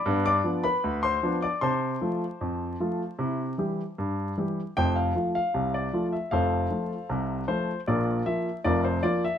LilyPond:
<<
  \new Staff \with { instrumentName = "Grand piano" } { \time 2/4 \key f \major \tempo 4 = 77 <d'' b'' d'''>16 <d'' d'''>8 <b' b''>8 <c'' c'''>8 <d'' d'''>16 | <c'' a'' c'''>2~ | <c'' a'' c'''>4. r8 | <c'' g''>16 f''8 f''8 d''8 e''16 |
<a' c'' f''>4. c''8 | <f' bes' d''>8 e''8 <f' bes' d''>16 c''16 d''16 e''16 | }
  \new Staff \with { instrumentName = "Grand piano" } { \clef bass \time 2/4 \key f \major <g, b>8 <f b d'>8 d,8 <f b d'>8 | c8 <f a f'>8 f,8 <f a f'>8 | <c e'>8 <e g g'>8 g,8 <e g g'>8 | <f,, f,>8 <f a f'>8 <c, c>8 <f a f'>8 |
<f,, f,>8 <f a f'>8 <c, c>8 <f a f'>8 | <bes,, bes,>8 <f bes f'>8 <f,, f,>8 <f bes f'>8 | }
>>